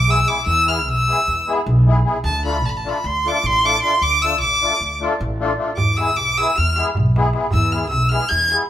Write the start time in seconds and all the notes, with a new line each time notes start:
Already playing: B1 D6
0.07 G#3 B3 E4 G#4 E6
0.25 G#3 B3 E4 G#4 D6
0.46 E2 E6
0.65 G#3 B3 E4 G#4 F6
0.79 F6
0.87 B1 E6
1.07 G#3 B3 E4 G#4
1.28 E2
1.47 G#3 B3 E4 G#4
1.66 B1
1.86 G#3 B3 E4 G#4
2.04 G#3 B3 E4 G#4
2.24 D2 A5
2.44 A3 D4 F4 A4 B5
2.63 A1 A5
2.69 B5
2.77 A5
2.85 A3 D4 F4 A4
2.89 B5
3.04 D2 C6
3.25 A3 D4 F4 A4 D6
3.43 A1 C6
3.63 A3 D4 F4 A4 D6
3.82 A3 D4 F4 A4 C6
4.01 D2 D6
4.22 A3 D4 F4 A4 E6
4.40 A1 D6
4.61 A3 D4 F4 A4
4.81 D2
5.00 A3 D4 F4 A4
5.20 A1
5.40 A3 D4 F4 A4
5.57 A3 D4 F4 A4
5.77 E2 D6, darbuka dum
5.88 darbuka tek
5.97 G#3 B3 E4 G#4 E6, darbuka tek
6.17 B1 D6, darbuka tek
6.37 G#3 B3 E4 G#4 E6, darbuka tek
6.56 E2 F6, darbuka tek
6.76 G#3 B3 E4 G#4, darbuka tek
6.86 darbuka tek
6.95 B1, darbuka dum
7.05 darbuka tek
7.16 G#3 B3 E4 G#4, darbuka tek
7.33 G#3 B3 E4 G#4, darbuka tek
7.51 E2 E6, darbuka dum
7.62 darbuka tek
7.72 G#3 B3 E4 G#4 F6, darbuka tek
7.89 B1 E6, darbuka tek
8.09 G#3 B3 E4 G#4 F6, darbuka tek
8.29 E2 G#6, darbuka tek
8.51 G#3 B3 E4 G#4, darbuka tek
8.61 darbuka tek